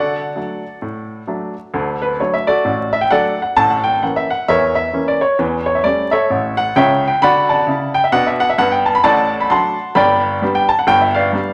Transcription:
upright piano
Already playing: D3 F#4 A4 D5 F#5
0.36 F#3 A3 D4
0.82 A2
1.27 F#3 A3 D4
1.74 D2 D3
2.02 B4
2.20 F#3 A3 D4 C#5
2.34 E5
2.47 F#4 A4 D5
2.65 A1 A2
2.93 E5
3.01 G5
3.10 F#3 A3 D4 A4 D5 F#5
3.42 F#5
3.57 A1 A2 A5
3.70 F#5
3.84 G5
4.03 E3 A#3 C#4 F#5
4.16 E5
4.30 F#5
4.48 E2 E3 A#4 C#5 E5
4.75 E5
4.93 E3 A#3 C#4
5.08 D5
5.21 C#5
5.39 E2 E3
5.66 C#5
5.75 E5
5.84 G3 A3 C#4 D5
6.11 A4 C#5 E5
6.30 A1 A2
6.57 F#5
6.76 C#2 C#3 C#5 E5 G5
7.08 G5
7.22 D3 F#4 D5 F#5 B5
7.49 D5 F#5 A5
7.67 C#3 E4
7.94 G5
8.04 E5
8.12 B2 D4 F#5
8.26 E5
8.40 F#5
8.49 E5
8.58 G2 B3 F#5
8.72 G5
8.86 A5
8.95 B5
9.04 A1 A2 D5 F#5 A5
9.40 B5
9.50 F#3 A3 D4 F#5 A5 C6
9.95 G1 G2 D5 G5 B5
10.42 G3 B3 D4
10.55 G5
10.69 A5
10.79 F#5
10.87 G1 G2 G5
11.01 E5
11.14 B4 D5 F5
11.32 G3 B3 D4

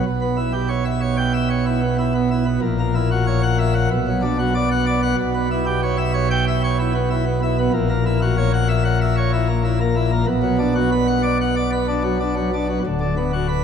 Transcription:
pipe organ
0.05 B1 B2
0.22 B3
0.37 E4
0.53 G4
0.69 C#5
0.85 E5
1.01 C#5
1.17 G5
1.33 E5
1.50 C#5
1.66 E4
1.82 B3
1.98 E4
2.15 B3
2.31 E4
2.46 B3
2.62 A#1 A#2
2.79 A#3
2.95 E4
3.11 F#4
3.27 C#5
3.43 F#5
3.59 E5
3.75 F#5
3.91 B1 B2
4.07 F#3
4.22 D4
4.39 F#4
4.55 D5
4.71 F#5
4.86 D5
5.02 F#5
5.18 B1 B2
5.34 B3
5.51 E4
5.66 G4
5.83 C#5
5.98 E5
6.14 C#5
6.31 G5
6.48 E5
6.64 C#5
6.79 E4
6.95 B3
7.10 E4
7.26 B3
7.43 E4
7.58 B3
7.73 A#1 A#2
7.89 A#3
8.06 E4
8.22 F#4
8.37 C#5
8.53 F#5
8.69 E5
8.85 F#5
9.01 E5
9.17 C#5
9.33 E4
9.49 A#3
9.64 E4
9.80 A#3
9.96 E4
10.12 A#3
10.27 B1 B2
10.43 F#3
10.59 D4
10.75 F#4
10.92 B4
11.07 F#5
11.23 D5
11.41 F#5
11.56 D5
11.72 B4
11.88 D4
12.04 F#3
12.20 D4
12.36 F#3
12.54 D4
12.70 F#3
12.86 D1 D2
13.00 D3
13.17 B3
13.33 F#4
13.48 B4

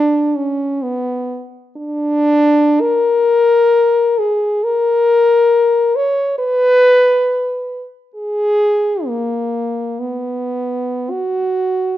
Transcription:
french horn
Already playing: D4
0.36 C#4
0.83 B3
1.77 D4
2.81 A#4
4.18 G#4
4.64 A#4
5.96 C#5
6.38 B4
8.15 G#4
9.06 A#3
10.00 B3
11.10 F#4

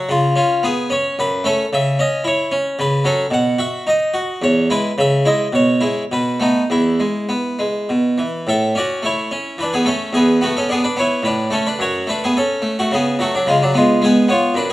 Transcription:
harpsichord
0.09 C#3 F4
0.36 C#4 F4
0.63 B3 G#4
0.90 C#4 C#5
1.19 F#2 B4
1.44 A3 C#4 A4
1.73 C#3 E5
1.99 C#4 D#5
2.24 E4 C#5
2.52 C#4
2.79 C#3 B4
3.05 F#3 C#4 A4
3.31 B2 F#5
3.58 F#4 E5
3.87 D#4 D#5
4.14 F#4
4.42 E2 C#5
4.70 G#3 E4 B4
4.98 C#3 E5
5.25 G#3 E4 D#5
5.53 B2 C#5
5.81 G#3 E4
6.12 B2 B4
6.40 A3 B3 D#4
6.70 E2 E4
7.00 G#3
7.29 B3
7.59 G#3
7.89 B2
8.18 E3
8.47 A2 A4 E5
8.75 C#4 F#4 D5
9.02 A3 E4 C#5
9.31 C#4
9.58 E3 D4 B4
9.73 B3 G#4
9.85 A3 C#4 A4
10.13 E2 B3 G#4
10.41 A3 B3 F#4
10.57 C#4 A4
10.69 B3 D4 G#4
10.84 D4 B4
10.97 B3 E4 C#5
11.23 A2 D4 B4
11.51 A3 C#4 A4
11.67 D4 B4
11.79 F#2 F#4 C#5
12.07 A3 D4 B4
12.24 B3 G#4
12.37 C#4 A4
12.62 A3
12.79 A3 F#4
12.91 C#3 B3 G#4
13.19 F#3 A3 F#4
13.35 F#3 D4
13.47 C#3 G#3 F4
13.62 F#3 D4
13.74 G#3 B3 F4
14.02 G#3 B3 G#4
14.28 B3 F4 C#5
14.54 F#2 D4 B4

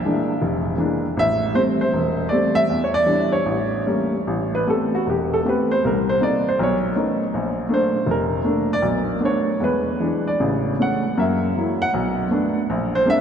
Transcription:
grand piano
Already playing: E5
0.05 E3 G#3 A#3 D4
0.42 F1
0.78 E3 G#3 A#3 D4
1.17 A1 E5
1.54 G3 A3 C4 C5
1.81 C5
1.93 E1
2.29 G3 A3 C4 D5
2.55 E5
2.70 E2
2.84 C#5
2.94 D5
3.06 E3 G3 D4
3.32 C#5
3.46 A1
3.86 G3 A3 A#3 C#4
4.27 A1
4.55 B4
4.67 A3 B3 C4 G4 A4
4.95 F#4
5.06 E1 G4
5.34 A4
5.45 A3 B3 C4 G4 B4
5.71 C5
5.85 C2 A#4
6.09 C5
6.20 A#3 C4 D#4 D5
6.48 C5
6.59 B1 C#5
6.96 A3 B3 C#4 D#4
7.34 A#1
7.69 A3 A#3 D4
7.74 C5
8.06 F1
8.11 A#4
8.44 A3 A#3 D4
8.73 D5
8.82 B1
9.20 A3 B3 D4
9.25 C#5
9.60 E2 G#3 B4
10.00 E3 G#3 D4
10.28 D5
10.40 A1 C#3
10.79 G#3 A3 C#4 F#5
11.17 F#2 A#3 E5
11.56 F#3 A#3 E4
11.82 F#5
11.94 B1
12.31 A3 B3 D4
12.70 A#1
12.95 C5
13.06 G#3 A#3 C4 D4
13.10 E5

